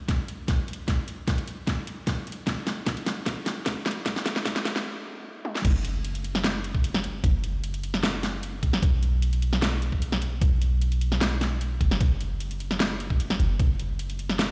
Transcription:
0.08 kick loud
0.08 snare medium
0.08 closed hi-hat medium
0.28 closed hi-hat medium
0.48 kick loud
0.48 snare medium
0.48 closed hi-hat medium
0.68 closed hi-hat medium
0.73 closed hi-hat medium
0.88 kick medium
0.88 snare medium
0.88 closed hi-hat medium
1.08 closed hi-hat medium
1.28 kick loud
1.28 snare medium
1.28 closed hi-hat medium
1.38 closed hi-hat medium
1.48 closed hi-hat medium
1.67 kick medium
1.67 snare medium
1.67 closed hi-hat medium
1.87 closed hi-hat medium
2.07 kick loud
2.07 snare medium
2.07 closed hi-hat medium
2.27 closed hi-hat medium
2.32 closed hi-hat medium
2.47 kick loud
2.47 snare medium
2.47 closed hi-hat medium
2.67 snare medium
2.67 closed hi-hat medium
2.86 kick loud
2.86 snare medium
2.86 closed hi-hat medium
2.97 closed hi-hat medium
3.06 snare medium
3.06 closed hi-hat medium
3.26 kick loud
3.26 snare medium
3.26 closed hi-hat medium
3.46 snare medium
3.46 closed hi-hat medium
3.66 kick loud
3.66 snare medium
3.66 closed hi-hat medium
3.86 snare medium
3.86 closed hi-hat soft
3.91 closed hi-hat medium
4.06 kick loud
4.06 snare medium
4.06 closed hi-hat medium
4.16 snare medium
4.26 snare medium
4.26 closed hi-hat medium
4.36 snare medium
4.45 kick loud
4.45 snare loud
4.45 closed hi-hat medium
4.56 snare medium
4.56 closed hi-hat medium
4.65 snare loud
4.65 closed hi-hat medium
4.76 snare medium
5.45 high tom medium
5.55 snare medium
5.65 7.22 F#1 medium
5.65 kick loud
5.65 closed hi-hat medium
5.65 crash loud
5.85 closed hi-hat medium
6.05 closed hi-hat medium
6.15 closed hi-hat medium
6.24 closed hi-hat medium
6.35 snare medium
6.44 snare loud
6.44 closed hi-hat medium
6.64 closed hi-hat medium
6.75 kick medium
6.84 closed hi-hat medium
6.94 snare medium
7.04 closed hi-hat medium
7.24 8.81 F#1 medium
7.24 kick loud
7.24 closed hi-hat medium
7.44 closed hi-hat medium
7.64 closed hi-hat medium
7.74 closed hi-hat medium
7.83 closed hi-hat medium
7.94 snare medium
8.03 snare loud
8.03 closed hi-hat medium
8.23 snare medium
8.23 closed hi-hat medium
8.43 closed hi-hat medium
8.63 kick medium
8.63 closed hi-hat medium
8.73 snare medium
8.83 10.40 B1 medium
8.83 kick loud
8.83 closed hi-hat medium
9.03 closed hi-hat medium
9.22 closed hi-hat medium
9.33 closed hi-hat medium
9.42 closed hi-hat medium
9.53 snare medium
9.62 snare loud
9.62 closed hi-hat medium
9.82 closed hi-hat medium
9.92 kick medium
10.02 closed hi-hat medium
10.12 snare medium
10.22 closed hi-hat medium
10.42 11.79 B1 medium
10.42 kick loud
10.42 closed hi-hat medium
10.62 closed hi-hat medium
10.82 closed hi-hat medium
10.92 closed hi-hat medium
11.01 closed hi-hat medium
11.12 snare medium
11.21 snare loud
11.21 closed hi-hat medium
11.41 snare medium
11.41 closed hi-hat medium
11.61 closed hi-hat medium
11.81 13.38 F#1 medium
11.81 kick medium
11.81 closed hi-hat medium
11.91 snare medium
12.01 kick loud
12.01 closed hi-hat medium
12.21 closed hi-hat medium
12.40 closed hi-hat medium
12.51 closed hi-hat medium
12.60 closed hi-hat medium
12.71 snare medium
12.80 snare loud
12.80 closed hi-hat medium
13.00 closed hi-hat medium
13.10 kick medium
13.20 closed hi-hat medium
13.30 snare medium
13.40 14.51 F#1 medium
13.40 closed hi-hat medium
13.60 kick loud
13.60 closed hi-hat medium
13.80 closed hi-hat medium
13.99 closed hi-hat medium
14.10 closed hi-hat medium
14.19 closed hi-hat medium
14.29 snare medium
14.39 snare loud
14.39 closed hi-hat medium

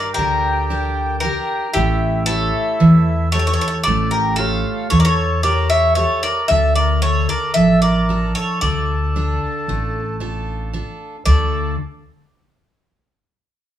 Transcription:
0.00 0.14 G3 medium
0.00 0.49 D4 medium
0.00 0.49 G4 soft
0.00 0.11 A#4 medium
0.00 0.49 A#4 medium
0.14 1.28 D2 medium
0.14 1.17 G4 medium
0.14 1.17 A#4 medium
0.19 1.20 D3 medium
0.70 1.23 D4 medium
0.70 1.23 G4 medium
0.70 1.24 A#4 medium
1.20 1.65 D4 medium
1.20 1.70 G4 medium
1.20 1.76 A#4 medium
1.24 1.66 G4 soft
1.24 1.66 A#4 medium
1.74 2.49 A1 loud
1.74 2.78 A3 medium
1.74 2.23 E4 medium
1.74 2.29 G4 medium
2.26 3.29 E4 medium
2.26 3.13 G4 soft
2.26 3.29 A4 loud
2.26 3.13 A4 soft
2.26 3.13 C#5 medium
2.80 3.55 E2 medium
2.80 3.83 E3 medium
3.32 4.19 G4 medium
3.32 3.82 A4 medium
3.32 4.19 A4 medium
3.32 3.38 C#5 medium
3.32 4.19 C#5 medium
3.39 3.46 C#5 medium
3.47 3.52 C#5 medium
3.54 3.60 C#5 medium
3.61 3.66 C#5 medium
3.68 3.76 C#5 medium
3.83 4.61 A1 loud
3.83 4.10 A4 medium
3.83 4.09 D5 medium
3.88 4.90 A3 medium
4.11 4.37 G4 medium
4.11 4.36 A#4 medium
4.36 4.88 F4 medium
4.36 5.23 G4 medium
4.36 4.87 A4 medium
4.36 5.23 A4 soft
4.36 5.24 C#5 medium
4.90 6.03 E2 medium
4.90 5.94 E3 medium
4.90 4.98 A4 medium
4.90 4.98 C#5 medium
4.99 5.06 A#4 medium
4.99 5.04 D5 medium
5.05 5.42 A4 medium
5.05 5.42 C#5 medium
5.43 5.95 G4 medium
5.43 5.96 A4 soft
5.43 5.69 A#4 medium
5.43 5.97 C#5 medium
5.43 5.69 D5 medium
5.70 5.96 C#5 medium
5.70 5.95 E5 medium
5.95 6.39 G4 medium
5.95 6.22 A4 medium
5.95 6.40 A4 soft
5.95 6.21 C#5 medium
5.95 6.40 C#5 medium
6.23 6.49 A#4 medium
6.23 6.48 D5 medium
6.48 7.25 D2 loud
6.48 7.53 D3 medium
6.48 6.76 A4 medium
6.48 6.74 E5 medium
6.75 7.02 A#4 medium
6.75 7.02 D5 medium
7.02 7.87 D4 soft
7.02 7.88 F4 soft
7.02 7.28 A4 medium
7.02 7.88 A4 medium
7.02 7.29 C#5 medium
7.29 7.54 A#4 medium
7.29 7.54 D5 medium
7.54 8.31 A1 medium
7.54 8.58 F3 medium
7.54 7.81 A4 medium
7.54 7.80 E5 medium
7.82 8.32 A#4 medium
7.82 8.35 D5 medium
8.09 8.94 D4 soft
8.09 8.94 F4 soft
8.09 8.94 A4 medium
8.35 8.60 A4 medium
8.35 8.60 C#5 medium
8.61 9.36 D2 loud
8.61 9.65 D3 medium
8.61 10.16 A4 medium
8.61 10.16 D5 medium
9.16 10.00 D4 medium
9.16 10.00 F4 medium
9.16 10.00 A4 soft
9.68 10.79 A1 medium
9.68 10.71 A3 medium
10.20 10.72 D4 medium
10.20 10.72 F4 medium
10.20 10.73 A4 medium
10.73 11.16 D4 medium
10.73 11.16 F4 soft
10.73 11.16 A4 medium
11.25 11.75 D2 medium
11.25 11.75 D3 medium
11.25 11.75 A3 medium
11.25 11.75 D4 medium
11.25 11.76 F4 medium
11.25 11.75 A4 medium
11.25 11.76 A4 medium
11.25 11.75 D5 medium

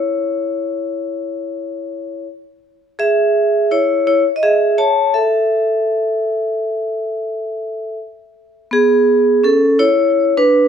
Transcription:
0.00 2.25 E4 medium
0.00 2.25 C#5 medium
2.99 3.67 G#4 medium
2.99 3.73 E5 medium
3.71 4.04 E4 medium
3.71 4.06 C#5 medium
4.07 4.21 E4 medium
4.07 4.21 C#5 medium
4.36 4.42 D#5 medium
4.43 4.76 G#4 medium
4.43 4.80 E5 medium
4.78 5.11 C#5 medium
4.78 5.15 A5 loud
5.14 7.96 A4 medium
5.14 7.96 E5 medium
8.71 9.39 B3 medium
8.71 9.46 G#4 medium
9.43 9.76 C#4 medium
9.43 9.80 A4 medium
9.79 10.32 E4 medium
9.79 10.33 C#5 loud
10.37 10.68 D4 medium
10.37 10.68 B4 loud

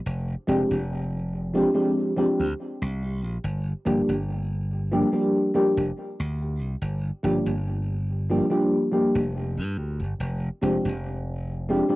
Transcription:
0.06 0.34 F1 loud
0.47 0.63 F1 medium
0.47 0.73 F3 medium
0.47 0.74 G#3 medium
0.47 0.74 C4 medium
0.47 0.74 D4 medium
0.47 0.74 G4 loud
0.71 1.64 F1 medium
1.54 1.70 F3 medium
1.54 1.70 G#3 medium
1.54 1.70 C4 medium
1.54 1.70 D4 medium
1.54 1.70 G4 loud
1.74 2.12 F3 medium
1.74 2.12 G#3 medium
1.74 2.12 C4 medium
1.74 2.13 D4 medium
1.74 2.13 G4 loud
2.16 2.43 F3 medium
2.16 2.43 G#3 medium
2.16 2.43 C4 medium
2.16 2.43 D4 medium
2.16 2.43 G4 loud
2.40 2.53 D2 medium
2.82 3.24 C2 medium
3.24 3.37 A#1 loud
3.44 3.72 G1 loud
3.85 4.01 G1 medium
3.85 4.11 F3 medium
3.85 4.12 G3 medium
3.85 4.12 A#3 medium
3.85 4.12 D4 medium
3.85 4.12 G4 loud
4.08 5.02 G1 medium
4.92 5.08 F3 loud
4.92 5.08 G3 medium
4.92 5.08 A#3 medium
4.92 5.08 D4 medium
4.92 5.08 G4 loud
5.12 5.50 F3 medium
5.12 5.50 G3 medium
5.12 5.50 A#3 medium
5.12 5.51 D4 medium
5.12 5.51 G4 loud
5.54 5.80 F3 medium
5.54 5.80 G3 medium
5.54 5.81 A#3 medium
5.54 5.81 D4 medium
5.54 5.81 G4 loud
5.77 5.90 F1 medium
6.20 6.62 D2 medium
6.62 6.75 C2 loud
6.82 7.10 G1 loud
7.23 7.39 G1 medium
7.23 7.49 F3 medium
7.23 7.50 G3 medium
7.23 7.50 A#3 medium
7.23 7.50 D4 medium
7.23 7.50 G4 loud
7.46 8.40 G1 medium
8.30 8.46 F3 loud
8.30 8.46 G3 medium
8.30 8.46 A#3 medium
8.30 8.46 D4 medium
8.30 8.46 G4 loud
8.50 8.88 F3 medium
8.50 8.88 G3 medium
8.50 8.88 A#3 medium
8.50 8.89 D4 medium
8.50 8.89 G4 loud
8.92 9.18 F3 loud
8.92 9.19 G3 medium
8.92 9.19 A#3 medium
8.92 9.19 D4 medium
8.92 9.19 G4 loud
9.15 9.59 F1 medium
9.57 9.78 G2 medium
9.78 10.01 D2 medium
10.00 10.13 G1 medium
10.20 10.48 F1 loud
10.62 10.77 F1 medium
10.62 10.88 F3 medium
10.62 10.88 G#3 medium
10.62 10.88 C4 medium
10.62 10.88 D4 medium
10.62 10.88 G4 medium
10.85 11.78 F1 medium
11.69 11.84 F3 loud
11.69 11.84 G#3 medium
11.69 11.85 C4 medium
11.69 11.85 D4 medium
11.69 11.85 G4 loud
11.88 11.96 F3 medium
11.88 11.96 G#3 medium
11.88 11.96 C4 medium
11.88 11.96 D4 medium
11.88 11.96 G4 loud

